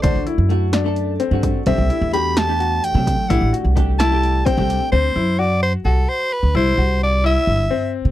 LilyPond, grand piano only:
\new Staff \with { instrumentName = "Grand piano" } { \time 7/8 \key d \mixolydian \tempo 4 = 129 d'8 e'4 d'4 c'4 | c'8 e'8 g'4 fis'4 r8 | e'8 fis'4 e'4 c'4 | c'8 e'8 fis'4 fis'4 r8 |
e'8 fis'4 e'4 c'4 | }